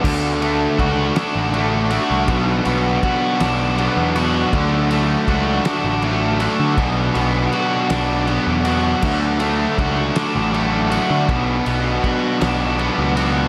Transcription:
<<
  \new Staff \with { instrumentName = "Distorted electric guitar" } { \time 6/8 \key d \major \tempo 4. = 53 <d a d' fis'>8 <a d' fis'>8 <d a d' fis'>8 <a d' fis'>8 <d a d' fis'>8 <a d' fis'>8 | <b, fis b d' fis'>8 <b d' fis'>8 <fis b d' fis'>8 <b d' fis'>8 <fis b d' fis'>8 <b d' fis'>8 | <d fis a d' fis'>8 <a d' fis'>8 <fis a d' fis'>8 <a d' fis'>8 <fis a d' fis'>8 <a d' fis'>8 | <b, fis b d' fis'>8 <b d' fis'>8 <fis b d' fis'>8 <b d' fis'>8 <fis b d' fis'>8 <b d' fis'>8 |
<d fis a d' fis'>8 <a d' fis'>8 <fis a d' fis'>8 <a d' fis'>8 <fis a d' fis'>8 <a d' fis'>8 | <b, fis b d' fis'>8 <b d' fis'>8 <fis b d' fis'>8 <b d' fis'>8 <fis b d' fis'>8 <b d' fis'>8 | }
  \new Staff \with { instrumentName = "Overdriven electric guitar" } { \time 6/8 \key d \major d8 a8 fis'8 d'8 a8 fis'8 | b,8 b8 fis'8 d'8 b8 fis'8 | d8 a8 fis'8 d'8 a8 fis'8 | b,8 b8 fis'8 d'8 b8 fis'8 |
d8 a8 fis'8 d'8 a8 fis'8 | b,8 b8 fis'8 d'8 b8 fis'8 | }
  \new Staff \with { instrumentName = "Picked electric bass" } { \clef bass \time 6/8 \key d \major d,4 cis,8 r16 a,,4 c,16 | b,,8 b,,8 r8 b,,8. e,8. | d,4 cis,8 r16 a,,4 d16 | b,,8 b,,8 r8 b,,8. e,8. |
d,4 cis,8 r16 a,,4 d16 | b,,8 b,,8 r8 b,,8. cis,8. | }
  \new DrumStaff \with { instrumentName = "Drums" } \drummode { \time 6/8 <cymc bd>8 cymr8 <bd cymr>8 <cymr sn>8 cymr8 cymr8 | <bd cymr>8 cymr8 <bd cymr>8 <cymr sn>8 cymr8 cymr8 | <bd cymr>8 cymr8 <bd cymr>8 <cymr sn>8 cymr8 cymr8 | <bd cymr>8 cymr8 cymr8 <cymr sn>8 cymr8 cymr8 |
<cymc bd>8 cymr8 <bd cymr>8 <cymr sn>8 cymr8 cymr8 | <bd cymr>8 cymr8 <bd cymr>8 <cymr sn>8 cymr8 cymr8 | }
>>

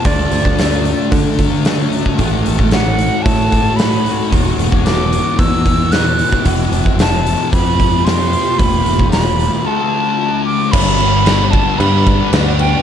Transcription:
<<
  \new Staff \with { instrumentName = "Flute" } { \time 4/4 \key d \lydian \tempo 4 = 112 d''2 r2 | r4 fis''4 a''4 b''4 | r4 d'''4 e'''4 fis'''4 | r4 a''4 b''4 c'''4 |
b''4 b''4 a''4. d'''8 | \key g \lydian b''4. a''8 b''4 r8 g''8 | }
  \new Staff \with { instrumentName = "Ambient pad" } { \time 4/4 \key d \lydian << { <d fis'>1 | cis''1 | gis1 | <a g'>1 |
r1 | \key g \lydian <d'' fis''>1 | } \\ { a1~ | a1 | e'1 | f'1 |
r1 | b'1 | } >> }
  \new Staff \with { instrumentName = "Clean electric guitar" } { \time 4/4 \key d \lydian <d a d' fis'>1 | <a, e a cis' fis'>1 | <e, b, e gis b fis'>1 | <f a c' g'>1 |
<e, b, e gis b fis'>2 <d a c' fis'>2 | \key g \lydian <g b d' fis'>8 <b d' fis'>8 <g b d' fis'>8 <b d' fis'>4. <g b d' fis'>8 <b d' fis'>8 | }
  \new Staff \with { instrumentName = "Distorted electric guitar" } { \clef bass \time 4/4 \key d \lydian <d a d'>2 <d a d'>2 | <a, e a>2 <a, e a>2 | <e, b, e>2 <e, b, e>2 | <f, c f>2 <f, c f>2 |
<e, b, e>2 <d a d'>2 | \key g \lydian <g, d g>8 <d g>8 <g, d g>8 <d g>4 <d g>8 <g, d g>4 | }
  \new Staff \with { instrumentName = "Picked electric bass" } { \clef bass \time 4/4 \key d \lydian d,8 d,4. d2 | a,,8 a,,4. a,2 | e,,8 e,,4. e,2 | f,,8 f,,4. f,2 |
e,,8 e,,4. r2 | \key g \lydian g,,2 g,4 d,4 | }
  \new DrumStaff \with { instrumentName = "Drums" } \drummode { \time 4/4 <hho bd>8 hho16 bd16 <hho sn>8 hho8 <hho bd>8 <hho bd>8 <hho sn>8 hho16 bd16 | <hho bd>8 hho16 bd16 <hho sn>8 hho8 <hho bd>8 <hho bd>8 <hho sn>8 hho8 | <hho bd>8 hho16 bd16 <hho sn>8 hho8 <hho bd>8 <hho bd>8 <hho sn>8 hho16 bd16 | <hho bd>8 hho16 bd16 <hho sn>8 hho8 <hho bd>8 <hho bd>8 <hho sn>8 hho8 |
<hho bd>8 hho16 bd16 <hho sn>8 hho8 r4 r4 | <cymc bd>8 cymc8 <cymc sn>8 <cymc bd>8 cymc8 <cymc bd>8 <cymc sn>8 cymc8 | }
>>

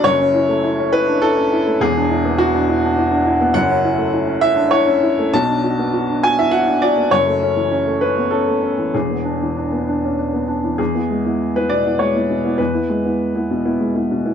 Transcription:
\new Staff \with { instrumentName = "Upright piano" } { \time 3/4 \key e \mixolydian \tempo 4 = 101 << { cis''4. b'8 a'4 | gis'4 fis'4 r4 | fis''4. e''8 cis''4 | a''4. gis''16 e''16 fis''8 d''8 |
cis''4. b'8 a'4 | gis'2 r4 | gis'4~ gis'16 b'16 d''8 cis''4 | b'2~ b'8 r8 | } \\ { <fis,, fis,>16 cis'16 e'16 a16 e'16 cis'16 e'16 d'16 e'16 cis'16 e'16 a16 | <e,, e,>16 d'16 e'16 b16 e'16 d'16 e'16 d'16 e'16 d'16 e'16 b16 | <fis,, fis,>16 cis'16 e'16 a16 e'16 cis'16 e'16 d'16 e'16 cis'16 e'16 a16 | <b,, b,>16 d'16 fis'16 b16 fis'16 d'16 fis'16 e'16 fis'16 d'16 fis'16 b16 |
<fis,, fis,>16 a16 cis'16 e16 cis'16 a16 cis'16 b16 cis'16 a16 cis'16 e16 | <e,, e,>16 b16 d'16 e16 d'16 b16 d'16 cis'16 d'16 b16 d'16 e16 | e,16 <b e'>16 gis16 <b e'>8 <b e'>16 b,16 <b e'>16 gis16 <b e'>16 b,16 <b e'>16 | e,16 <b e'>16 gis16 <b e'>8 <b e'>16 b,16 <b e'>16 gis16 <b e'>16 b,16 <b e'>16 | } >> }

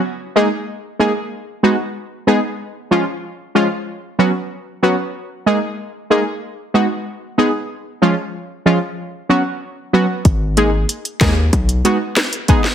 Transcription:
<<
  \new Staff \with { instrumentName = "Synth stab" } { \time 4/4 \key gis \minor \tempo 4 = 94 r8 <gis ais dis' gis'>8 r8 <gis ais dis' gis'>8 r8 <gis b dis' fis'>8 r8 <gis b dis' gis'>8 | r8 <eis gis cis' eis'>8 r8 <eis gis cis' eis'>8 r8 <fis b cis' fis'>8 r8 <fis b cis' fis'>8 | r8 <gis ais dis' gis'>8 r8 <gis ais dis' gis'>8 r8 <gis b dis' fis'>8 r8 <gis b dis' gis'>8 | r8 <eis gis cis' eis'>8 r8 <eis gis cis' eis'>8 r8 <fis b cis' fis'>8 r8 <fis b cis' fis'>8 |
r8 <gis ais dis' gis'>8 r8 <gis ais dis' gis'>8 r8 <gis b dis' fis'>8 r8 <gis b dis' gis'>8 | }
  \new Staff \with { instrumentName = "808-style bass" } { \clef bass \time 4/4 \key gis \minor r1 | r1 | r1 | r1 |
gis,,4 r8 dis,8 b,,8 r4. | }
  \new DrumStaff \with { instrumentName = "Drums" } \drummode { \time 4/4 r4 r4 r4 r4 | r4 r4 r4 r4 | r4 r4 r4 r4 | r4 r4 r4 r4 |
<hh bd>8 hh8 hh16 hh16 <hh bd ss sn>8 <hh bd>16 hh16 hh8 <hh ss sn>16 hh16 <hh bd>16 sn16 | }
>>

